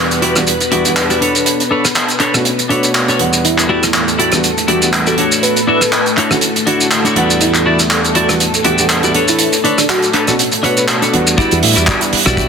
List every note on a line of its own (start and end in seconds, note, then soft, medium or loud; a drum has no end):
0.00 0.32 E2 medium
0.00 0.33 G3 medium
0.00 0.33 B3 medium
0.00 3.46 B3 medium
0.00 0.33 D4 medium
0.00 3.46 B4 medium
0.00 0.33 F#5 medium
0.11 closed hi-hat soft
0.11 shaker soft
0.22 0.41 E4 medium
0.22 0.42 F#4 medium
0.22 0.42 G4 medium
0.22 0.42 D5 medium
0.22 closed hi-hat medium
0.36 0.49 E2 medium
0.36 0.49 G3 medium
0.36 0.49 B3 medium
0.36 0.49 D4 medium
0.36 0.49 F#4 medium
0.36 cross-stick medium
0.36 closed hi-hat soft
0.36 shaker medium
0.47 closed hi-hat medium
0.47 shaker medium
0.61 muted clean electric guitar stroke soft
0.61 closed hi-hat medium
0.61 shaker soft
0.71 0.82 E2 medium
0.71 0.82 G3 medium
0.71 0.82 B3 medium
0.71 0.82 D4 medium
0.71 0.91 E4 medium
0.71 0.91 F#4 medium
0.71 0.83 F#4 medium
0.71 0.91 G4 medium
0.71 0.92 D5 medium
0.71 closed hi-hat medium
0.85 1.20 E2 medium
0.85 1.20 G3 medium
0.85 1.20 B3 medium
0.85 1.20 D4 medium
0.85 1.21 F#5 medium
0.85 closed hi-hat medium
0.85 shaker medium
0.96 clap loud
0.96 closed hi-hat medium
0.96 shaker medium
1.10 1.21 E4 medium
1.10 1.21 F#4 medium
1.10 1.21 G4 medium
1.10 1.21 D5 medium
1.10 closed hi-hat soft
1.10 shaker soft
1.21 1.62 D4 medium
1.21 1.62 A4 medium
1.21 1.62 B4 medium
1.21 1.63 C#5 medium
1.21 closed hi-hat medium
1.35 closed hi-hat medium
1.35 shaker medium
1.46 closed hi-hat medium
1.46 shaker medium
1.60 closed hi-hat soft
1.60 shaker soft
1.71 1.85 D4 loud
1.71 1.85 A4 medium
1.71 1.85 B4 medium
1.71 1.85 C#5 loud
1.85 cross-stick medium
1.85 closed hi-hat soft
1.85 shaker medium
1.95 muted clean electric guitar stroke soft
1.95 clap medium
1.95 closed hi-hat medium
1.95 shaker medium
2.08 closed hi-hat soft
2.08 shaker soft
2.19 2.40 D4 medium
2.19 2.40 A4 medium
2.19 2.40 B4 medium
2.19 2.40 C#5 medium
2.19 clap soft
2.19 closed hi-hat medium
2.34 2.47 B2 medium
2.34 2.47 A3 medium
2.34 2.47 C#4 medium
2.34 2.47 D4 medium
2.34 2.47 F#4 medium
2.34 cross-stick medium
2.34 closed hi-hat soft
2.34 shaker medium
2.45 closed hi-hat medium
2.45 shaker medium
2.58 muted clean electric guitar stroke soft
2.58 closed hi-hat soft
2.58 shaker soft
2.69 3.17 B2 medium
2.69 3.17 A3 medium
2.69 2.89 D4 loud
2.69 3.17 D4 medium
2.69 3.18 F#4 medium
2.69 2.89 A4 medium
2.69 2.90 B4 medium
2.69 3.17 C#5 medium
2.69 2.90 C#5 loud
2.69 closed hi-hat medium
2.83 closed hi-hat soft
2.83 shaker medium
2.94 clap loud
2.94 closed hi-hat medium
2.94 shaker medium
3.08 3.20 D4 medium
3.08 3.20 A4 medium
3.08 3.20 B4 medium
3.08 3.20 C#5 medium
3.08 closed hi-hat soft
3.08 shaker soft
3.19 4.29 E2 medium
3.19 4.29 G3 medium
3.19 4.30 B3 medium
3.19 4.30 D4 medium
3.19 4.30 F#5 medium
3.19 closed hi-hat medium
3.33 muted clean electric guitar stroke soft
3.33 closed hi-hat soft
3.33 shaker medium
3.45 11.39 A3 medium
3.45 3.65 E4 medium
3.45 11.39 A4 medium
3.45 closed hi-hat medium
3.45 shaker medium
3.58 clap soft
3.58 closed hi-hat medium
3.58 shaker soft
3.69 3.83 E4 medium
3.69 3.90 E4 medium
3.69 3.83 F#4 medium
3.69 3.83 G4 medium
3.69 3.84 D5 loud
3.83 cross-stick medium
3.83 closed hi-hat soft
3.83 shaker medium
3.94 muted clean electric guitar stroke soft
3.94 clap loud
3.94 closed hi-hat medium
3.94 shaker medium
4.08 closed hi-hat soft
4.08 shaker soft
4.19 4.38 E4 medium
4.19 4.38 F#4 medium
4.19 4.39 G4 medium
4.19 4.39 D5 medium
4.19 closed hi-hat medium
4.32 4.45 E2 medium
4.32 4.45 G3 medium
4.32 4.45 B3 medium
4.32 4.46 D4 medium
4.32 4.46 F#4 medium
4.32 cross-stick medium
4.32 closed hi-hat medium
4.32 shaker medium
4.44 closed hi-hat medium
4.44 shaker medium
4.57 muted clean electric guitar stroke soft
4.57 closed hi-hat soft
4.57 shaker soft
4.68 4.79 E2 medium
4.68 4.79 G3 medium
4.68 4.79 B3 medium
4.68 4.79 D4 medium
4.68 4.88 E4 medium
4.68 4.88 F#4 medium
4.68 4.79 F#4 medium
4.68 4.88 G4 medium
4.68 4.78 G4 medium
4.68 4.88 D5 medium
4.68 closed hi-hat medium
4.82 5.17 E2 medium
4.82 5.17 G3 medium
4.82 5.17 B3 medium
4.82 5.17 D4 medium
4.82 4.90 G4 medium
4.82 5.17 F#5 medium
4.82 closed hi-hat soft
4.82 shaker medium
4.93 clap loud
4.93 closed hi-hat medium
4.93 shaker medium
5.07 5.17 E4 medium
5.07 5.17 F#4 medium
5.07 5.18 G4 medium
5.07 5.24 A4 medium
5.07 5.19 D5 medium
5.07 closed hi-hat soft
5.07 shaker soft
5.18 5.59 D4 medium
5.18 5.59 E4 medium
5.18 5.59 F#4 medium
5.18 5.59 C#5 medium
5.18 closed hi-hat medium
5.32 closed hi-hat medium
5.32 shaker medium
5.43 5.63 B4 medium
5.43 closed hi-hat medium
5.43 shaker medium
5.57 closed hi-hat soft
5.57 shaker soft
5.67 5.81 D4 loud
5.67 5.81 E4 medium
5.67 5.82 F#4 medium
5.67 6.06 B4 medium
5.67 5.82 E5 loud
5.81 cross-stick medium
5.81 closed hi-hat medium
5.81 shaker medium
5.92 muted clean electric guitar stroke soft
5.92 clap loud
5.92 closed hi-hat medium
5.92 shaker medium
6.06 closed hi-hat soft
6.06 shaker soft
6.17 6.37 D4 medium
6.17 6.37 E4 medium
6.17 6.37 F#4 medium
6.17 6.37 C#5 medium
6.17 clap soft
6.17 closed hi-hat medium
6.30 6.43 D3 medium
6.30 6.43 A3 medium
6.30 6.44 C#4 medium
6.30 6.44 E4 medium
6.30 6.44 F#4 medium
6.30 cross-stick medium
6.30 closed hi-hat soft
6.30 shaker medium
6.41 closed hi-hat medium
6.41 shaker medium
6.56 muted clean electric guitar stroke soft
6.56 closed hi-hat soft
6.56 shaker soft
6.66 7.14 D3 medium
6.66 7.14 A3 medium
6.66 6.86 D4 loud
6.66 7.14 E4 medium
6.66 6.86 E4 medium
6.66 6.86 F#4 medium
6.66 7.14 F#4 medium
6.66 6.87 C#5 loud
6.66 closed hi-hat medium
6.81 closed hi-hat soft
6.81 shaker medium
6.91 clap loud
6.91 closed hi-hat medium
6.91 shaker medium
7.05 7.16 D4 medium
7.05 7.15 E4 medium
7.05 7.15 F#4 medium
7.05 7.17 C#5 medium
7.05 closed hi-hat soft
7.05 shaker soft
7.15 8.26 E2 medium
7.15 8.26 G3 medium
7.15 8.26 B3 medium
7.15 8.26 D4 medium
7.15 7.57 E4 medium
7.15 7.57 F#4 medium
7.15 7.57 G4 medium
7.15 7.58 D5 medium
7.15 8.27 F#5 loud
7.15 closed hi-hat medium
7.30 closed hi-hat soft
7.30 shaker medium
7.41 7.61 E4 medium
7.41 closed hi-hat medium
7.41 shaker medium
7.54 clap soft
7.54 closed hi-hat medium
7.54 shaker soft
7.66 7.80 E4 medium
7.66 7.86 E4 medium
7.66 7.80 F#4 loud
7.66 7.80 G4 medium
7.66 7.80 D5 loud
7.79 cross-stick soft
7.79 closed hi-hat medium
7.79 shaker medium
7.90 muted clean electric guitar stroke soft
7.90 clap loud
7.90 closed hi-hat medium
7.90 shaker medium
8.05 closed hi-hat soft
8.05 shaker soft
8.15 8.35 E4 medium
8.15 8.35 F#4 medium
8.15 8.35 G4 medium
8.15 8.35 D5 medium
8.15 closed hi-hat medium
8.29 8.42 E2 medium
8.29 8.42 G3 medium
8.29 8.42 B3 medium
8.29 8.42 D4 medium
8.29 8.42 F#4 medium
8.29 cross-stick medium
8.29 closed hi-hat medium
8.29 shaker medium
8.40 closed hi-hat medium
8.40 shaker medium
8.54 muted clean electric guitar stroke soft
8.54 closed hi-hat soft
8.54 shaker soft
8.64 8.75 E2 medium
8.64 8.75 G3 medium
8.64 8.76 B3 medium
8.64 8.76 D4 medium
8.64 8.84 E4 loud
8.64 8.84 F#4 medium
8.64 8.76 F#4 medium
8.64 8.74 G4 medium
8.64 8.85 G4 medium
8.64 8.85 D5 loud
8.64 closed hi-hat medium
8.78 9.13 E2 medium
8.78 9.13 G3 medium
8.78 9.13 B3 medium
8.78 9.14 D4 medium
8.78 8.86 G4 medium
8.78 9.14 F#5 medium
8.78 closed hi-hat medium
8.78 shaker medium
8.89 clap loud
8.89 closed hi-hat medium
8.89 shaker medium
9.03 9.15 E4 medium
9.03 9.14 F#4 medium
9.03 9.15 G4 medium
9.03 9.15 D5 medium
9.03 closed hi-hat soft
9.03 shaker soft
9.14 9.55 D4 medium
9.14 9.56 A4 medium
9.14 9.56 B4 medium
9.14 9.56 C#5 loud
9.14 closed hi-hat medium
9.28 9.48 E4 medium
9.28 closed hi-hat soft
9.28 shaker medium
9.39 closed hi-hat loud
9.39 shaker medium
9.53 closed hi-hat medium
9.53 shaker soft
9.64 9.78 D4 loud
9.64 9.73 D4 medium
9.64 9.78 A4 medium
9.64 9.78 B4 medium
9.64 9.79 C#5 loud
9.64 closed hi-hat soft
9.78 9.85 D4 medium
9.78 cross-stick medium
9.78 closed hi-hat medium
9.78 shaker medium
9.89 10.10 F#4 medium
9.89 muted clean electric guitar stroke soft
9.89 clap loud
9.89 closed hi-hat loud
9.89 shaker medium
10.02 closed hi-hat soft
10.02 shaker soft
10.13 10.33 D4 medium
10.13 10.33 A4 medium
10.13 10.23 A4 medium
10.13 10.34 B4 medium
10.13 10.34 C#5 medium
10.13 clap soft
10.13 closed hi-hat medium
10.27 10.40 B2 medium
10.27 10.40 A3 medium
10.27 10.40 C#4 medium
10.27 10.40 D4 medium
10.27 10.41 F#4 medium
10.27 10.35 A4 medium
10.27 cross-stick medium
10.27 closed hi-hat soft
10.27 shaker medium
10.39 closed hi-hat medium
10.39 shaker medium
10.52 muted clean electric guitar stroke soft
10.52 closed hi-hat medium
10.52 shaker soft
10.63 11.10 B2 medium
10.63 11.10 A3 medium
10.63 10.83 D4 loud
10.63 11.11 D4 medium
10.63 11.11 F#4 medium
10.63 10.83 A4 medium
10.63 10.83 B4 medium
10.63 10.73 B4 medium
10.63 11.10 C#5 medium
10.63 10.83 C#5 loud
10.63 cross-stick medium
10.63 closed hi-hat medium
10.77 10.85 B4 medium
10.77 closed hi-hat medium
10.77 shaker medium
10.88 clap loud
10.88 closed hi-hat medium
10.88 shaker medium
11.02 11.13 D4 medium
11.02 11.13 A4 medium
11.02 11.13 B4 medium
11.02 11.14 C#5 medium
11.02 closed hi-hat medium
11.02 shaker soft
11.13 11.63 E2 medium
11.13 11.36 G3 medium
11.13 11.36 B3 medium
11.13 11.37 D4 medium
11.13 11.63 F#4 loud
11.13 closed hi-hat medium
11.26 muted clean electric guitar stroke soft
11.26 closed hi-hat medium
11.26 shaker medium
11.37 12.12 G3 loud
11.37 12.48 G3 medium
11.37 12.12 B3 medium
11.37 12.13 D4 medium
11.37 11.57 E4 loud
11.37 11.58 E4 medium
11.37 11.57 F#4 loud
11.37 11.57 G4 loud
11.37 11.58 D5 loud
11.37 12.48 F#5 medium
11.37 12.13 F#5 loud
11.37 muted fingered electric bass stroke soft
11.37 kick loud
11.37 closed hi-hat medium
11.37 shaker medium
11.51 11.61 E2 loud
11.51 closed hi-hat medium
11.51 shaker soft
11.63 11.74 A2 medium
11.63 11.83 E4 medium
11.63 open hi-hat loud
11.76 11.86 E2 medium
11.76 12.01 E4 medium
11.76 12.01 F#4 medium
11.76 12.01 G4 medium
11.76 12.02 D5 loud
11.76 cross-stick medium
11.76 closed hi-hat medium
11.76 shaker medium
11.87 kick loud
11.87 clap loud
11.87 closed hi-hat medium
11.87 shaker medium
12.01 closed hi-hat medium
12.01 shaker soft
12.13 muted fingered electric bass stroke soft
12.13 open hi-hat loud
12.26 12.48 B1 medium
12.26 12.39 G3 medium
12.26 12.39 B3 medium
12.26 12.39 D4 medium
12.26 12.48 E4 medium
12.26 12.48 F#4 medium
12.26 12.39 F#4 medium
12.26 12.48 G4 medium
12.26 12.48 D5 loud
12.26 cross-stick medium
12.26 closed hi-hat medium
12.26 shaker medium
12.37 kick loud
12.37 closed hi-hat medium
12.37 shaker medium